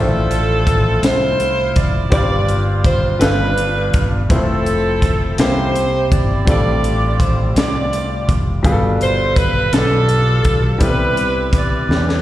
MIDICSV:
0, 0, Header, 1, 5, 480
1, 0, Start_track
1, 0, Tempo, 723764
1, 1409, Time_signature, 6, 3, 24, 8
1, 8104, End_track
2, 0, Start_track
2, 0, Title_t, "Saxophone section"
2, 0, Program_c, 0, 65
2, 0, Note_on_c, 0, 60, 76
2, 0, Note_on_c, 0, 65, 75
2, 0, Note_on_c, 0, 69, 110
2, 663, Note_off_c, 0, 69, 0
2, 668, Note_off_c, 0, 60, 0
2, 670, Note_off_c, 0, 65, 0
2, 690, Note_on_c, 0, 72, 111
2, 702, Note_on_c, 0, 64, 84
2, 703, Note_on_c, 0, 65, 79
2, 1168, Note_on_c, 0, 74, 114
2, 1170, Note_off_c, 0, 72, 0
2, 1390, Note_off_c, 0, 64, 0
2, 1390, Note_off_c, 0, 65, 0
2, 1401, Note_off_c, 0, 74, 0
2, 1409, Note_on_c, 0, 74, 118
2, 1427, Note_on_c, 0, 65, 84
2, 1782, Note_off_c, 0, 74, 0
2, 1894, Note_on_c, 0, 72, 109
2, 2113, Note_off_c, 0, 65, 0
2, 2116, Note_off_c, 0, 72, 0
2, 2122, Note_on_c, 0, 71, 100
2, 2134, Note_on_c, 0, 62, 77
2, 2136, Note_on_c, 0, 65, 75
2, 2641, Note_off_c, 0, 71, 0
2, 2826, Note_off_c, 0, 62, 0
2, 2828, Note_off_c, 0, 65, 0
2, 2856, Note_on_c, 0, 69, 97
2, 2868, Note_on_c, 0, 60, 76
2, 2868, Note_on_c, 0, 64, 75
2, 3547, Note_off_c, 0, 69, 0
2, 3553, Note_off_c, 0, 60, 0
2, 3553, Note_off_c, 0, 64, 0
2, 3574, Note_on_c, 0, 72, 107
2, 3581, Note_on_c, 0, 67, 78
2, 3582, Note_on_c, 0, 64, 70
2, 4053, Note_off_c, 0, 72, 0
2, 4058, Note_on_c, 0, 74, 97
2, 4269, Note_off_c, 0, 67, 0
2, 4270, Note_off_c, 0, 64, 0
2, 4294, Note_off_c, 0, 74, 0
2, 4309, Note_on_c, 0, 74, 101
2, 4312, Note_on_c, 0, 65, 83
2, 4315, Note_on_c, 0, 67, 85
2, 4753, Note_off_c, 0, 74, 0
2, 4783, Note_on_c, 0, 72, 97
2, 4994, Note_off_c, 0, 65, 0
2, 4996, Note_off_c, 0, 67, 0
2, 5000, Note_off_c, 0, 72, 0
2, 5023, Note_on_c, 0, 74, 93
2, 5028, Note_on_c, 0, 65, 73
2, 5030, Note_on_c, 0, 67, 68
2, 5555, Note_off_c, 0, 74, 0
2, 5711, Note_off_c, 0, 65, 0
2, 5712, Note_off_c, 0, 67, 0
2, 5989, Note_on_c, 0, 72, 108
2, 6202, Note_off_c, 0, 72, 0
2, 6214, Note_on_c, 0, 71, 112
2, 6450, Note_off_c, 0, 71, 0
2, 6453, Note_on_c, 0, 69, 110
2, 6463, Note_on_c, 0, 65, 79
2, 6464, Note_on_c, 0, 62, 79
2, 7147, Note_off_c, 0, 62, 0
2, 7147, Note_off_c, 0, 65, 0
2, 7168, Note_off_c, 0, 69, 0
2, 7173, Note_on_c, 0, 71, 102
2, 7180, Note_on_c, 0, 67, 73
2, 7181, Note_on_c, 0, 64, 80
2, 7652, Note_off_c, 0, 67, 0
2, 7654, Note_off_c, 0, 71, 0
2, 7660, Note_on_c, 0, 67, 73
2, 7662, Note_on_c, 0, 71, 75
2, 7673, Note_on_c, 0, 74, 95
2, 8104, Note_off_c, 0, 64, 0
2, 8104, Note_off_c, 0, 67, 0
2, 8104, Note_off_c, 0, 71, 0
2, 8104, Note_off_c, 0, 74, 0
2, 8104, End_track
3, 0, Start_track
3, 0, Title_t, "Grand piano"
3, 0, Program_c, 1, 0
3, 0, Note_on_c, 1, 45, 60
3, 0, Note_on_c, 1, 53, 55
3, 0, Note_on_c, 1, 57, 66
3, 0, Note_on_c, 1, 62, 57
3, 0, Note_on_c, 1, 72, 69
3, 0, Note_on_c, 1, 76, 63
3, 86, Control_c, 1, 64, 127
3, 656, Note_off_c, 1, 45, 0
3, 1374, Note_off_c, 1, 57, 0
3, 1376, Note_off_c, 1, 62, 0
3, 1379, Note_off_c, 1, 76, 0
3, 1381, Note_off_c, 1, 53, 0
3, 1384, Note_off_c, 1, 72, 0
3, 1395, Note_on_c, 1, 55, 60
3, 1399, Note_on_c, 1, 60, 58
3, 1399, Note_on_c, 1, 62, 59
3, 1401, Note_on_c, 1, 43, 68
3, 1402, Note_on_c, 1, 65, 54
3, 1403, Note_on_c, 1, 72, 74
3, 1416, Control_c, 1, 64, 0
3, 1550, Control_c, 1, 64, 127
3, 2100, Note_off_c, 1, 43, 0
3, 2107, Note_off_c, 1, 55, 0
3, 2113, Note_off_c, 1, 62, 0
3, 2115, Note_off_c, 1, 65, 0
3, 2117, Note_on_c, 1, 55, 67
3, 2121, Note_on_c, 1, 59, 65
3, 2123, Note_on_c, 1, 62, 65
3, 2125, Note_on_c, 1, 65, 58
3, 2126, Note_off_c, 1, 60, 0
3, 2126, Note_on_c, 1, 43, 66
3, 2127, Note_off_c, 1, 72, 0
3, 2127, Note_on_c, 1, 69, 60
3, 2138, Control_c, 1, 64, 0
3, 2170, Note_on_c, 1, 71, 73
3, 2172, Note_off_c, 1, 69, 0
3, 2249, Control_c, 1, 64, 127
3, 2822, Note_off_c, 1, 43, 0
3, 2845, Note_off_c, 1, 55, 0
3, 2846, Note_off_c, 1, 59, 0
3, 2847, Note_off_c, 1, 62, 0
3, 2847, Note_on_c, 1, 57, 64
3, 2849, Note_off_c, 1, 65, 0
3, 2854, Note_on_c, 1, 60, 53
3, 2855, Note_on_c, 1, 64, 60
3, 2857, Note_on_c, 1, 53, 59
3, 2858, Note_on_c, 1, 72, 66
3, 2861, Control_c, 1, 64, 0
3, 2871, Note_off_c, 1, 71, 0
3, 2977, Control_c, 1, 64, 127
3, 3563, Note_off_c, 1, 60, 0
3, 3568, Note_off_c, 1, 64, 0
3, 3570, Note_off_c, 1, 57, 0
3, 3571, Note_on_c, 1, 58, 65
3, 3573, Note_on_c, 1, 60, 64
3, 3574, Note_off_c, 1, 53, 0
3, 3574, Note_off_c, 1, 72, 0
3, 3575, Note_on_c, 1, 48, 70
3, 3578, Note_on_c, 1, 64, 61
3, 3581, Control_c, 1, 64, 0
3, 3581, Note_on_c, 1, 67, 65
3, 3584, Note_on_c, 1, 72, 75
3, 3702, Control_c, 1, 64, 127
3, 4266, Note_off_c, 1, 48, 0
3, 4276, Note_off_c, 1, 60, 0
3, 4278, Note_on_c, 1, 55, 62
3, 4286, Note_on_c, 1, 60, 61
3, 4289, Note_on_c, 1, 45, 62
3, 4289, Note_on_c, 1, 62, 61
3, 4291, Note_off_c, 1, 58, 0
3, 4295, Note_off_c, 1, 64, 0
3, 4295, Note_on_c, 1, 65, 53
3, 4296, Note_off_c, 1, 67, 0
3, 4297, Note_off_c, 1, 72, 0
3, 4298, Control_c, 1, 64, 0
3, 4304, Note_on_c, 1, 69, 71
3, 4413, Control_c, 1, 64, 127
3, 4983, Note_off_c, 1, 45, 0
3, 5696, Note_off_c, 1, 55, 0
3, 5700, Note_off_c, 1, 60, 0
3, 5701, Note_off_c, 1, 62, 0
3, 5704, Note_off_c, 1, 65, 0
3, 5709, Note_off_c, 1, 69, 0
3, 5721, Note_on_c, 1, 47, 65
3, 5721, Note_on_c, 1, 55, 72
3, 5730, Note_on_c, 1, 43, 70
3, 5730, Note_on_c, 1, 62, 67
3, 5734, Note_on_c, 1, 65, 77
3, 5737, Control_c, 1, 64, 0
3, 5739, Note_on_c, 1, 68, 74
3, 5777, Note_off_c, 1, 68, 0
3, 5781, Note_on_c, 1, 69, 82
3, 5847, Control_c, 1, 64, 127
3, 6421, Note_off_c, 1, 43, 0
3, 7135, Note_off_c, 1, 47, 0
3, 7135, Note_off_c, 1, 55, 0
3, 7140, Note_off_c, 1, 62, 0
3, 7142, Note_off_c, 1, 65, 0
3, 7151, Note_on_c, 1, 55, 69
3, 7159, Note_on_c, 1, 59, 56
3, 7163, Note_on_c, 1, 48, 62
3, 7164, Note_on_c, 1, 60, 55
3, 7165, Note_off_c, 1, 69, 0
3, 7169, Note_on_c, 1, 64, 57
3, 7175, Control_c, 1, 64, 0
3, 7176, Note_on_c, 1, 69, 53
3, 7214, Note_off_c, 1, 69, 0
3, 7217, Note_on_c, 1, 71, 66
3, 7275, Control_c, 1, 64, 127
3, 7856, Note_off_c, 1, 48, 0
3, 8104, Note_off_c, 1, 55, 0
3, 8104, Note_off_c, 1, 59, 0
3, 8104, Note_off_c, 1, 60, 0
3, 8104, Note_off_c, 1, 64, 0
3, 8104, Note_off_c, 1, 71, 0
3, 8104, End_track
4, 0, Start_track
4, 0, Title_t, "Fingered electric bass"
4, 0, Program_c, 2, 33
4, 0, Note_on_c, 2, 33, 105
4, 660, Note_off_c, 2, 33, 0
4, 681, Note_on_c, 2, 36, 97
4, 1139, Note_off_c, 2, 36, 0
4, 1170, Note_on_c, 2, 29, 81
4, 1391, Note_off_c, 2, 29, 0
4, 1405, Note_on_c, 2, 31, 101
4, 2102, Note_off_c, 2, 31, 0
4, 2127, Note_on_c, 2, 31, 97
4, 2583, Note_off_c, 2, 31, 0
4, 2612, Note_on_c, 2, 31, 80
4, 2832, Note_off_c, 2, 31, 0
4, 2854, Note_on_c, 2, 29, 90
4, 3546, Note_off_c, 2, 29, 0
4, 3573, Note_on_c, 2, 36, 112
4, 4025, Note_off_c, 2, 36, 0
4, 4059, Note_on_c, 2, 31, 74
4, 4276, Note_off_c, 2, 31, 0
4, 4296, Note_on_c, 2, 33, 93
4, 4986, Note_off_c, 2, 33, 0
4, 5018, Note_on_c, 2, 36, 94
4, 5466, Note_off_c, 2, 36, 0
4, 5495, Note_on_c, 2, 29, 91
4, 5713, Note_off_c, 2, 29, 0
4, 5731, Note_on_c, 2, 31, 101
4, 6422, Note_off_c, 2, 31, 0
4, 6452, Note_on_c, 2, 35, 104
4, 6902, Note_off_c, 2, 35, 0
4, 6928, Note_on_c, 2, 35, 80
4, 7148, Note_off_c, 2, 35, 0
4, 7169, Note_on_c, 2, 36, 96
4, 7859, Note_off_c, 2, 36, 0
4, 7885, Note_on_c, 2, 40, 101
4, 8104, Note_off_c, 2, 40, 0
4, 8104, End_track
5, 0, Start_track
5, 0, Title_t, "Drums"
5, 204, Note_on_c, 9, 42, 55
5, 271, Note_off_c, 9, 42, 0
5, 443, Note_on_c, 9, 36, 91
5, 445, Note_on_c, 9, 42, 75
5, 509, Note_off_c, 9, 36, 0
5, 511, Note_off_c, 9, 42, 0
5, 684, Note_on_c, 9, 42, 101
5, 693, Note_on_c, 9, 38, 111
5, 750, Note_off_c, 9, 42, 0
5, 759, Note_off_c, 9, 38, 0
5, 928, Note_on_c, 9, 42, 52
5, 994, Note_off_c, 9, 42, 0
5, 1166, Note_on_c, 9, 42, 73
5, 1169, Note_on_c, 9, 36, 89
5, 1233, Note_off_c, 9, 42, 0
5, 1236, Note_off_c, 9, 36, 0
5, 1404, Note_on_c, 9, 42, 83
5, 1406, Note_on_c, 9, 36, 97
5, 1470, Note_off_c, 9, 42, 0
5, 1473, Note_off_c, 9, 36, 0
5, 1648, Note_on_c, 9, 42, 45
5, 1715, Note_off_c, 9, 42, 0
5, 1887, Note_on_c, 9, 36, 93
5, 1889, Note_on_c, 9, 42, 72
5, 1953, Note_off_c, 9, 36, 0
5, 1956, Note_off_c, 9, 42, 0
5, 2128, Note_on_c, 9, 42, 101
5, 2137, Note_on_c, 9, 38, 110
5, 2194, Note_off_c, 9, 42, 0
5, 2203, Note_off_c, 9, 38, 0
5, 2372, Note_on_c, 9, 42, 56
5, 2438, Note_off_c, 9, 42, 0
5, 2610, Note_on_c, 9, 42, 68
5, 2613, Note_on_c, 9, 36, 83
5, 2677, Note_off_c, 9, 42, 0
5, 2679, Note_off_c, 9, 36, 0
5, 2852, Note_on_c, 9, 36, 108
5, 2853, Note_on_c, 9, 42, 83
5, 2918, Note_off_c, 9, 36, 0
5, 2920, Note_off_c, 9, 42, 0
5, 3093, Note_on_c, 9, 42, 49
5, 3160, Note_off_c, 9, 42, 0
5, 3331, Note_on_c, 9, 36, 85
5, 3332, Note_on_c, 9, 42, 82
5, 3397, Note_off_c, 9, 36, 0
5, 3398, Note_off_c, 9, 42, 0
5, 3570, Note_on_c, 9, 42, 99
5, 3579, Note_on_c, 9, 38, 125
5, 3636, Note_off_c, 9, 42, 0
5, 3645, Note_off_c, 9, 38, 0
5, 3817, Note_on_c, 9, 42, 56
5, 3883, Note_off_c, 9, 42, 0
5, 4057, Note_on_c, 9, 36, 88
5, 4057, Note_on_c, 9, 42, 67
5, 4123, Note_off_c, 9, 36, 0
5, 4123, Note_off_c, 9, 42, 0
5, 4294, Note_on_c, 9, 36, 102
5, 4295, Note_on_c, 9, 42, 91
5, 4360, Note_off_c, 9, 36, 0
5, 4362, Note_off_c, 9, 42, 0
5, 4537, Note_on_c, 9, 42, 49
5, 4603, Note_off_c, 9, 42, 0
5, 4773, Note_on_c, 9, 36, 92
5, 4778, Note_on_c, 9, 42, 76
5, 4840, Note_off_c, 9, 36, 0
5, 4844, Note_off_c, 9, 42, 0
5, 5016, Note_on_c, 9, 42, 92
5, 5025, Note_on_c, 9, 38, 117
5, 5083, Note_off_c, 9, 42, 0
5, 5092, Note_off_c, 9, 38, 0
5, 5259, Note_on_c, 9, 42, 52
5, 5325, Note_off_c, 9, 42, 0
5, 5496, Note_on_c, 9, 36, 89
5, 5497, Note_on_c, 9, 42, 75
5, 5563, Note_off_c, 9, 36, 0
5, 5564, Note_off_c, 9, 42, 0
5, 5733, Note_on_c, 9, 36, 106
5, 5734, Note_on_c, 9, 42, 89
5, 5800, Note_off_c, 9, 36, 0
5, 5800, Note_off_c, 9, 42, 0
5, 5975, Note_on_c, 9, 42, 52
5, 6041, Note_off_c, 9, 42, 0
5, 6210, Note_on_c, 9, 36, 98
5, 6214, Note_on_c, 9, 42, 78
5, 6277, Note_off_c, 9, 36, 0
5, 6280, Note_off_c, 9, 42, 0
5, 6452, Note_on_c, 9, 42, 92
5, 6460, Note_on_c, 9, 38, 126
5, 6518, Note_off_c, 9, 42, 0
5, 6527, Note_off_c, 9, 38, 0
5, 6689, Note_on_c, 9, 42, 52
5, 6756, Note_off_c, 9, 42, 0
5, 6928, Note_on_c, 9, 42, 68
5, 6931, Note_on_c, 9, 36, 84
5, 6994, Note_off_c, 9, 42, 0
5, 6997, Note_off_c, 9, 36, 0
5, 7166, Note_on_c, 9, 42, 90
5, 7168, Note_on_c, 9, 36, 97
5, 7232, Note_off_c, 9, 42, 0
5, 7234, Note_off_c, 9, 36, 0
5, 7410, Note_on_c, 9, 42, 47
5, 7476, Note_off_c, 9, 42, 0
5, 7645, Note_on_c, 9, 36, 92
5, 7648, Note_on_c, 9, 42, 86
5, 7711, Note_off_c, 9, 36, 0
5, 7714, Note_off_c, 9, 42, 0
5, 7899, Note_on_c, 9, 38, 60
5, 7965, Note_off_c, 9, 38, 0
5, 8018, Note_on_c, 9, 38, 60
5, 8085, Note_off_c, 9, 38, 0
5, 8104, End_track
0, 0, End_of_file